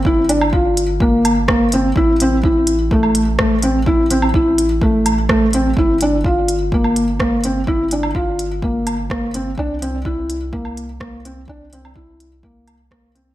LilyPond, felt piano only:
\new Staff \with { instrumentName = "Felt piano" } { \time 4/4 \key g \dorian \tempo 4 = 126 e'8 d'8 f'4 bes4 bes8 c'8 | e'8 c'8 e'4 a4 a8 c'8 | e'8 c'8 e'4 a4 a8 c'8 | e'8 d'8 f'4 bes4 bes8 c'8 |
e'8 d'8 f'4 bes4 bes8 c'8 | d'8 c'8 e'4 bes4 bes8 c'8 | d'8 c'8 e'4 bes4 bes8 c'8 | }